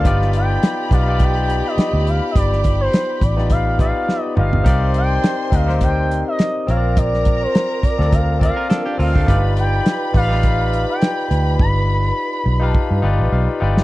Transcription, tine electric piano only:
0.04 B3 D#4 F4 G4 D5
0.91 B3 D#4 F4 G4 D5
1.07 B3 D#4 F4 G4 D5
3.36 B3 D#4 F4 G4 D5
3.79 B3 D#4 F4 G4 D5
4.35 B3 D#4 F4 G4 D#5
4.63 C4 D#4 G4 A#4 D5
5.50 C4 D#4 G4 A#4 D#5
5.66 C4 D#4 G4 A#4 C5
6.67 C4 F4 A#4 C#5
6.77 D5
7.98 C4 F4 A4 A#4 D5
8.39 C4 F4 A#4 D5
8.97 C4 F4 A4 A#4 F5
9.26 D#4 F4 G4 B4 D5
10.13 D#4 F4 G4 B4 D5
10.28 D#4 F4 G4 B4 D5
12.60 D#4 F4 G4 B4 F5
13.02 D#4 F4 G4 B4 D5
13.32 F5
13.60 D#4 F4 G4 B4 D5 G5

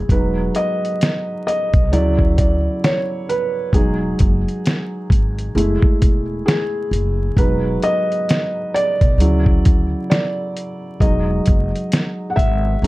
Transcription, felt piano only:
Already playing: G#3 A3 E4 G#4
0.11 F#3 G#3 D#4 B4
0.56 D#5
1.47 D#5
1.92 C#3 F#3 E4 D5
2.38 D5
2.84 C#5
3.29 B4
3.74 F#3 G#3 D#4 G#4
5.55 G#3 A3 E4
6.46 G#4
7.38 F#3 G#3 D#4 B4
7.83 D#5
8.74 D5
9.20 C#3 F#3 E4
10.10 D5
11.01 F#3 G#3 D#4 D#5
12.30 F#5
12.36 E5
12.83 F#3 G#3 C#4

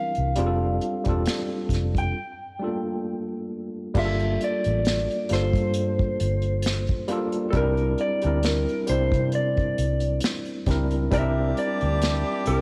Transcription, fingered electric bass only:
0.18 C2
0.38 F1
1.07 E1
1.70 F1
3.96 G1
4.66 A1
5.31 G1
5.54 G2
6.21 G1
7.54 C2
8.25 D2
8.89 C2
9.13 C3
9.79 C2
10.67 C#2
11.12 C2
11.82 D2
12.47 C2

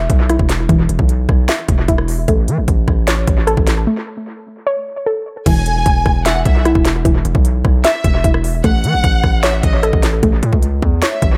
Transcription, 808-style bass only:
0.10 B1
0.39 E1
0.69 E1
0.89 E1
0.99 B1
1.29 B1
1.69 E1
1.88 E1
2.28 A1
2.48 E3
2.58 A1
2.68 A1
2.88 A1
3.27 A1
3.57 A1
5.46 E1
5.86 E1
6.06 E1
6.45 B1
6.75 E1
7.05 E1
7.25 E1
7.35 B1
7.65 B1
8.04 E1
8.24 E1
8.64 A1
8.84 E3
8.94 A1
9.04 A1
9.24 A1
9.63 A1
9.93 A1
10.23 A1
10.43 A2
10.53 C#2
10.82 E2
11.22 A1

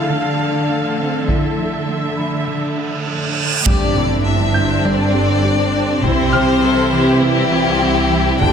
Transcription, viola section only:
Already playing: A4 F5
1.30 E5
3.67 G4
3.96 E4
4.25 D4
4.55 C4
5.44 D4
6.03 E4
6.32 G4
6.62 A4
6.92 G4
7.22 E4
7.52 F4
7.81 E4
8.40 D4

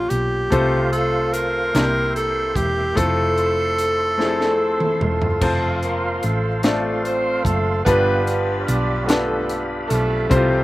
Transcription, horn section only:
4.21 A3 C4 E4 A4
5.02 A3 C4 F4 A4
5.84 A#3 A#4
6.24 A3 A4
6.63 A3 A4
7.05 C4 C5
7.44 A3 A4
7.84 B3 D4 F4 B4
8.24 B3 B4
8.65 D4 D5
9.05 A3 A4
9.88 A3 A4
9.92 F3 C4 F4

